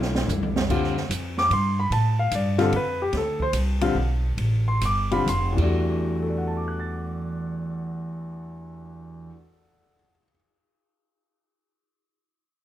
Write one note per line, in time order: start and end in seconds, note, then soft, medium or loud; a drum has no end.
0.00 0.27 B1 medium
0.00 0.61 A3 medium
0.00 0.61 D4 medium
0.00 0.61 E4 medium
0.00 0.61 F4 medium
0.00 snare soft
0.15 snare medium
0.28 0.68 C2 medium
0.28 floor tom medium
0.28 hi-hat pedal medium
0.43 floor tom medium
0.56 snare medium
0.70 1.09 D2 medium
0.70 0.94 D3 medium
0.70 0.94 G3 medium
0.70 0.94 C4 medium
0.70 0.94 F4 medium
0.70 kick medium
0.70 crash medium
0.84 snare soft
0.97 snare soft
1.09 1.49 F2 medium
1.09 hi-hat pedal medium
1.09 ride medium
1.38 1.51 D6 loud
1.38 snare soft
1.50 1.90 G2 medium
1.50 1.78 C6 medium
1.50 ride medium
1.79 1.92 B5 medium
1.90 2.30 A2 medium
1.90 2.18 A5 medium
1.90 ride medium
2.19 2.32 F5 medium
2.31 2.71 G2 medium
2.31 2.59 D5 medium
2.31 hi-hat pedal medium
2.31 ride medium
2.58 2.71 D3 medium
2.58 2.71 G3 medium
2.58 2.71 C4 medium
2.58 2.71 F4 medium
2.58 2.73 A4 medium
2.58 snare soft
2.58 ride soft
2.72 3.00 B4 medium
2.72 ride medium
3.02 3.14 G4 medium
3.13 3.52 D2 medium
3.13 snare soft
3.13 ride medium
3.17 3.41 A4 medium
3.40 3.50 C5 medium
3.40 kick medium
3.53 3.94 C2 medium
3.53 hi-hat pedal soft
3.53 ride medium
3.81 3.94 D3 medium
3.81 3.94 G3 medium
3.81 3.94 C4 medium
3.81 3.94 F4 medium
3.81 ride medium
3.95 4.36 B1 medium
4.37 4.80 A1 medium
4.37 ride medium
4.68 4.82 C6 medium
4.81 5.25 G1 medium
4.81 hi-hat pedal medium
4.81 ride medium
4.85 5.12 D6 medium
5.11 5.25 D3 medium
5.11 5.25 G3 medium
5.11 5.25 C4 medium
5.11 5.25 F4 medium
5.11 5.27 B5 medium
5.11 ride soft
5.26 5.56 F1 medium
5.26 5.46 C6 medium
5.26 hi-hat pedal medium
5.26 ride medium
5.52 9.28 E2 medium
5.52 9.30 E3 medium
5.52 9.32 G3 medium
5.58 9.29 E2 medium
5.58 9.35 A3 soft
5.58 kick soft
5.58 crash medium
5.62 9.38 D4 soft
5.62 9.40 F#4 medium
6.22 9.94 A4 soft
6.29 10.01 D5 soft
6.38 10.10 F#5 soft
6.47 10.19 A5 soft
6.57 10.24 D6 soft
6.68 10.30 F#6 soft
6.80 10.36 A6 soft